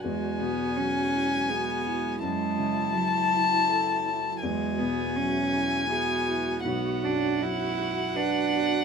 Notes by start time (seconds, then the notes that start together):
Already playing: F#4
0.04 E2 G#3 F#4 E5 G#5
0.40 B2 B3
0.76 F#3 C#4
1.13 E4
1.50 B3 G#4
1.86 E4
2.22 F#2 F#3 G#3 E4 A5
2.58 C#3
2.94 F#3
3.32 E4
3.69 A4
4.06 E4
4.41 E2 G#3 F#4 E5 G#5
4.79 B2 B3
5.17 F#3 C#4
5.55 E4
5.90 B3 G#4
6.28 E4
6.64 B1 B3 F#5
7.03 F#2 D4
7.41 F#3 E4
7.79 F#4
8.15 D4 B4
8.52 F#4